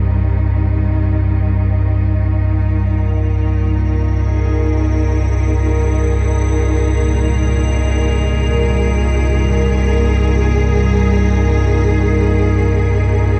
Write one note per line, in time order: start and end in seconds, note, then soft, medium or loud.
0.00 13.40 C2 medium
0.00 13.40 G2 medium
0.00 2.33 C3 medium
0.00 13.40 D#3 medium
0.00 2.33 G3 medium
0.00 13.40 D#4 medium
2.32 13.40 A#2 medium
2.32 13.40 A#4 medium
4.20 13.40 G#4 medium